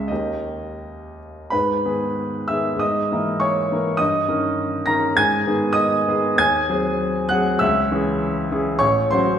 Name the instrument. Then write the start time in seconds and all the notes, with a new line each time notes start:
grand piano
Already playing: C#2 G#3 C#4 G#4 E5
0.08 D#2 D#3 A#3 G4 D#5
1.50 G#2 B4 B5
1.85 D#3 B3 G#4
2.48 D#3 B3 G#4 E5 E6
2.76 G#2 D#6
2.80 D#5
3.12 E3 A#3 A#4
3.40 C#5 C#6
3.72 E3 A#3 A#4
3.97 G2 D#5 D#6
4.28 D#3 C#4 A#4
4.86 D#3 C#4 A#4 A#5 A#6
5.15 G#2 G#5 G#6
5.47 D#3 B3 G#4
5.73 D#5 D#6
6.08 D#3 B3 G#4
6.35 D#2 G#5 G#6
6.69 F#3 C4 G#4
7.29 F#3 C4 F#5 F#6
7.33 G#4
7.59 C#2 E5 E6
7.92 E3 C#4 G#4
8.51 E3 C#4 G#4
8.79 A1 C#5 C#6
9.11 F#3 C#4 F#4 C5 C6